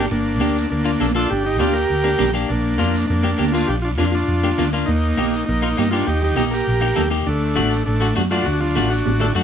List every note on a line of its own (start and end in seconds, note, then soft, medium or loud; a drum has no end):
0.10 0.41 G1 loud
0.10 0.67 A#3 medium
0.10 0.69 D4 medium
0.10 high conga soft
0.10 long guiro medium
0.40 0.65 D2 medium
0.40 0.56 A#3 medium
0.40 0.56 D4 medium
0.40 0.57 G4 medium
0.40 high conga medium
0.40 short guiro medium
0.56 short guiro medium
0.70 0.95 D2 medium
0.70 1.13 A#3 medium
0.70 1.12 D4 medium
0.70 high conga soft
0.70 long guiro medium
0.85 0.90 A#3 medium
0.85 0.90 D4 medium
0.85 0.91 F4 medium
1.00 1.25 A#1 medium
1.00 1.05 A#3 medium
1.00 1.06 D4 medium
1.00 1.06 A4 medium
1.00 high conga medium
1.00 short guiro medium
1.15 1.31 A#3 medium
1.15 1.31 D4 soft
1.15 1.30 D4 medium
1.15 1.29 F4 loud
1.15 1.31 A4 medium
1.15 short guiro medium
1.30 1.60 G1 loud
1.30 1.45 D4 medium
1.30 1.43 G4 loud
1.30 high conga soft
1.30 long guiro medium
1.44 1.60 D#4 medium
1.44 1.57 G4 medium
1.58 1.84 D2 medium
1.58 1.75 A#3 medium
1.58 1.76 D4 medium
1.58 1.74 D4 medium
1.58 1.76 F4 medium
1.58 1.74 G4 loud
1.58 high conga medium
1.58 short guiro medium
1.73 2.31 G4 medium
1.73 2.30 A#4 loud
1.73 short guiro medium
1.90 2.14 D2 loud
1.90 high conga soft
1.90 long guiro medium
2.04 2.10 A#3 medium
2.04 2.10 D4 medium
2.04 2.10 G4 medium
2.18 2.44 A#1 medium
2.18 2.24 A#3 medium
2.18 2.24 D4 medium
2.18 2.25 G4 loud
2.18 high conga medium
2.18 low conga medium
2.18 short guiro medium
2.34 2.49 A#3 medium
2.34 2.49 D4 medium
2.34 2.50 G4 medium
2.34 short guiro medium
2.49 2.80 A#1 medium
2.49 3.06 A#3 medium
2.49 3.06 D4 medium
2.49 high conga soft
2.49 long guiro medium
2.78 3.04 F2 medium
2.78 2.95 A#3 medium
2.78 2.95 D4 medium
2.78 2.95 F4 medium
2.78 high conga medium
2.78 short guiro medium
2.94 short guiro medium
3.07 3.33 F2 medium
3.07 3.51 A#3 medium
3.07 3.54 D4 medium
3.07 high conga soft
3.07 long guiro medium
3.23 3.29 A#3 medium
3.23 3.29 D4 medium
3.23 3.30 G4 medium
3.38 3.63 D2 medium
3.38 3.44 A#3 medium
3.38 3.44 D4 medium
3.38 3.44 G4 medium
3.38 high conga medium
3.38 short guiro medium
3.52 3.70 A#3 medium
3.52 3.70 D4 soft
3.52 3.68 D4 medium
3.52 3.68 F4 medium
3.52 3.70 F4 medium
3.52 short guiro medium
3.67 3.99 A#1 loud
3.67 3.76 D4 medium
3.67 3.74 G4 medium
3.67 high conga soft
3.67 long guiro medium
3.82 3.91 D4 medium
3.82 3.89 F4 medium
3.97 4.23 F2 medium
3.97 4.14 A#3 medium
3.97 4.14 D4 medium
3.97 4.07 D4 medium
3.97 4.04 F4 medium
3.97 4.15 F4 medium
3.97 high conga medium
3.97 short guiro medium
4.12 4.70 D4 medium
4.12 4.68 F4 medium
4.12 short guiro medium
4.28 4.52 F2 medium
4.28 high conga soft
4.28 long guiro medium
4.43 4.49 A#3 medium
4.43 4.49 D4 medium
4.43 4.49 G4 medium
4.58 4.82 D2 medium
4.58 4.64 A#3 medium
4.58 4.64 D4 medium
4.58 4.64 F4 medium
4.58 high conga medium
4.58 low conga medium
4.58 short guiro medium
4.73 4.88 A#3 medium
4.73 4.88 D4 medium
4.73 4.89 F4 medium
4.73 short guiro medium
4.86 5.18 D#2 loud
4.86 5.44 A#3 medium
4.86 5.45 D#4 medium
4.86 high conga soft
4.86 long guiro medium
5.17 5.42 A#1 medium
5.17 5.34 A#3 medium
5.17 5.34 D#4 medium
5.17 5.34 G4 medium
5.17 high conga medium
5.17 short guiro medium
5.33 short guiro medium
5.46 5.72 A#1 loud
5.46 5.90 A#3 medium
5.46 5.89 D#4 medium
5.46 high conga soft
5.46 long guiro medium
5.62 5.68 A#3 medium
5.62 5.68 D#4 medium
5.62 5.68 F4 medium
5.77 6.02 G2 medium
5.77 5.83 A#3 medium
5.77 5.83 D#4 medium
5.77 5.83 G4 medium
5.77 high conga medium
5.77 short guiro medium
5.91 6.08 A#3 medium
5.91 6.07 D4 medium
5.91 6.08 D#4 medium
5.91 6.06 F4 medium
5.91 6.09 G4 medium
5.91 short guiro medium
6.07 6.37 D#2 loud
6.07 6.22 D#4 medium
6.07 6.20 G4 medium
6.07 high conga soft
6.07 long guiro medium
6.21 6.37 D#4 medium
6.21 6.35 G4 medium
6.21 low conga medium
6.36 6.61 A#1 medium
6.36 6.53 A#3 medium
6.36 6.53 D#4 medium
6.36 6.45 D#4 medium
6.36 6.43 G4 medium
6.36 6.53 G4 medium
6.36 high conga medium
6.36 short guiro medium
6.51 7.09 G4 medium
6.51 7.07 A#4 medium
6.51 short guiro medium
6.67 6.91 A#1 medium
6.67 high conga soft
6.67 long guiro medium
6.81 6.87 A#3 medium
6.81 6.87 D#4 medium
6.81 6.87 G4 medium
6.95 7.21 D#2 medium
6.95 7.02 A#3 medium
6.95 7.02 D#4 medium
6.95 7.02 A4 medium
6.95 high conga medium
6.95 low conga medium
6.95 short guiro medium
7.10 7.26 A#3 medium
7.10 7.26 D#4 medium
7.10 7.27 G4 loud
7.10 short guiro medium
7.26 7.59 D2 loud
7.26 7.83 A3 medium
7.26 7.83 D4 medium
7.26 high conga soft
7.26 long guiro medium
7.56 7.81 A1 medium
7.56 7.72 A3 medium
7.56 7.72 D4 medium
7.56 7.72 F#4 medium
7.56 high conga medium
7.56 short guiro medium
7.71 short guiro medium
7.86 8.11 A1 loud
7.86 8.15 A3 medium
7.86 8.14 D4 medium
7.86 high conga soft
7.86 long guiro medium
8.01 8.06 A3 medium
8.01 8.07 D4 medium
8.01 8.07 F#4 medium
8.15 8.41 F#2 medium
8.15 8.21 A3 medium
8.15 8.21 D4 medium
8.15 8.22 F#4 medium
8.15 high conga medium
8.15 short guiro medium
8.31 8.47 A3 medium
8.31 8.47 D4 medium
8.31 8.45 D4 medium
8.31 8.47 F4 medium
8.31 8.47 F#4 medium
8.31 short guiro medium
8.45 8.78 D2 loud
8.45 8.60 D4 medium
8.45 8.60 F#4 medium
8.45 high conga soft
8.45 long guiro medium
8.61 8.89 D4 medium
8.61 8.89 F4 medium
8.61 low conga medium
8.75 9.00 A1 medium
8.75 8.92 A3 medium
8.75 8.92 D4 medium
8.75 8.92 F#4 medium
8.75 high conga medium
8.75 short guiro medium
8.90 9.33 D4 medium
8.90 9.32 F#4 medium
8.90 short guiro medium
9.06 9.30 A1 medium
9.06 high conga loud
9.06 long guiro medium
9.20 9.26 A3 medium
9.20 9.26 D4 medium
9.20 9.26 A4 medium
9.20 low conga medium
9.35 9.44 F#2 loud
9.35 9.41 A3 medium
9.35 9.41 D4 medium
9.35 9.41 F#4 medium
9.35 short guiro medium